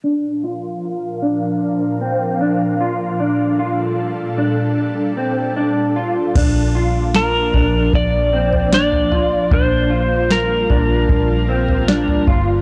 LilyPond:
<<
  \new Staff \with { instrumentName = "Electric slide guitar" } { \time 4/4 \key bes \lydian \tempo 4 = 76 r1 | r1 | r4 bes'4 d''4 d''4 | c''4 bes'2~ bes'8 r8 | }
  \new Staff \with { instrumentName = "Clean electric guitar" } { \time 4/4 \key bes \lydian d'8 f'4 d'4 c'8 d'8 f'8 | d'8 f'4 d'4 c'8 d'8 f'8 | d'8 f'4 d'4 c'8 d'8 f'8 | d'8 f'4 d'4 c'8 d'8 f'8 | }
  \new Staff \with { instrumentName = "Ambient pad" } { \time 4/4 \key bes \lydian << { <f bes'>1 | <g a'>1 | bes1~ | bes1 | } \\ { <bes, d' f''>1~ | <bes, d' f''>1 | <f d'>1 | <g f'>1 | } >> }
  \new Staff \with { instrumentName = "Fingered electric bass" } { \clef bass \time 4/4 \key bes \lydian r1 | r1 | bes,,4. bes,,8 bes,,2 | bes,,4. bes,,8 bes,,4. g,,8 | }
  \new DrumStaff \with { instrumentName = "Drums" } \drummode { \time 4/4 r4 r4 r4 r4 | r4 r4 r4 r4 | <cymc bd tomfh>4 sn8 <bd tomfh>8 <bd tomfh>8. tomfh16 sn16 tomfh16 tomfh8 | <bd tomfh>4 sn8 <bd tomfh>8 <bd tomfh>8. tomfh16 sn16 tomfh16 <bd tomfh>8 | }
>>